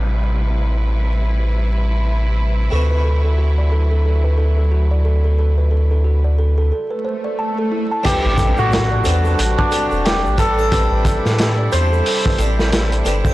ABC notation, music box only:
X:1
M:4/4
L:1/16
Q:"Swing 16ths" 1/4=90
K:Ador
V:1 name="Music box"
z16 | A B A A F d A A A B A A F d A A | A B A A F d A A A B c d a A E a | A B A A G d A A A B A A G d A A |
A B A A G d A A A B A A G d A A |]